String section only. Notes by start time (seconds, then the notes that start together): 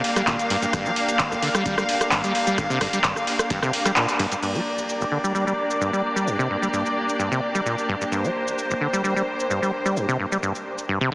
Already playing: A#3 D4 G4 F5
4.42 A#3 D4 G4 D5
8.12 C5